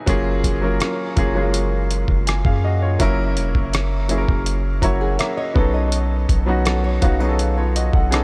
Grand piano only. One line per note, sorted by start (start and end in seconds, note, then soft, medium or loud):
0.06 0.51 F#3 loud
0.06 0.51 A#3 loud
0.06 0.52 C#4 medium
0.06 0.52 F4 loud
0.06 0.52 G#4 loud
0.61 1.06 F#3 medium
0.61 1.06 A#3 medium
0.61 1.07 C#4 medium
0.61 1.07 F4 medium
0.61 1.07 A#4 medium
1.16 1.31 F#3 medium
1.16 1.31 A#3 medium
1.16 1.32 C#4 medium
1.16 1.32 F4 medium
1.16 1.32 G#4 medium
1.34 2.53 F#3 medium
1.34 1.42 G#3 medium
1.34 2.53 C#4 medium
1.34 2.27 F4 medium
1.34 2.28 G#4 medium
1.41 2.56 A#3 medium
2.27 2.44 G#5 medium
2.46 2.63 G#4 medium
2.46 2.63 F5 medium
2.64 2.82 F#4 medium
2.64 2.81 D#5 medium
2.82 3.17 F4 medium
2.82 3.17 C#5 medium
2.99 3.88 F#3 loud
2.99 3.88 A#3 medium
2.99 3.89 C#4 medium
2.99 3.89 E4 medium
2.99 3.89 A#4 loud
4.08 4.68 F#3 medium
4.08 4.68 A#3 medium
4.08 4.69 C#4 medium
4.08 4.69 E4 medium
4.08 4.17 G#4 medium
4.18 4.73 A#4 medium
4.81 5.53 F#3 medium
4.81 5.55 A#3 medium
4.81 5.54 C#4 medium
4.81 5.56 E4 medium
4.81 5.57 C#5 medium
4.81 5.00 A#5 medium
5.01 5.18 F#5 medium
5.19 5.36 E5 medium
5.37 5.88 D#5 medium
5.54 6.29 F#3 medium
5.54 6.29 B3 medium
5.54 6.29 C#4 medium
5.54 6.30 D#4 medium
5.54 6.30 A4 medium
6.46 6.91 F#3 medium
6.46 6.91 B3 medium
6.46 6.92 C#4 medium
6.46 6.92 D#4 medium
6.46 6.92 F#4 medium
7.01 7.17 F#3 medium
7.01 7.17 B3 medium
7.01 7.17 C#4 medium
7.01 7.18 D#4 medium
7.01 7.18 F#4 medium
7.19 8.11 F#3 medium
7.19 8.10 B3 medium
7.19 8.11 C#4 medium
7.19 8.11 D#4 medium
7.19 7.28 G#4 medium
7.29 7.43 A4 medium
7.58 7.75 F4 medium
7.58 7.75 C#5 medium
7.76 7.93 F#4 medium
7.76 7.93 D#5 medium
7.94 8.12 A4 medium
7.94 8.24 F#5 medium
8.11 8.24 B3 medium
8.11 8.24 C#4 medium
8.11 8.24 D#4 medium
8.11 8.24 G#4 medium
8.11 8.24 A4 medium